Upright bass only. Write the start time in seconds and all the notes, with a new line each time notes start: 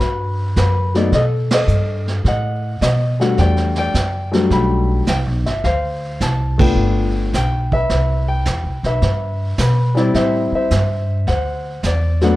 0.00 G2
0.56 F#2
1.12 B2
1.67 G2
2.24 A2
2.81 B2
3.38 E2
3.94 F#2
4.50 B1
5.07 C2
5.26 B1
5.44 G1
5.64 D2
6.21 C2
6.75 G1
7.33 B1
7.90 C2
8.46 E2
8.64 C2
8.83 B1
9.02 G2
9.58 B2
10.14 A2
10.52 muted upright bass stroke
10.71 G2
11.27 D2
11.84 E2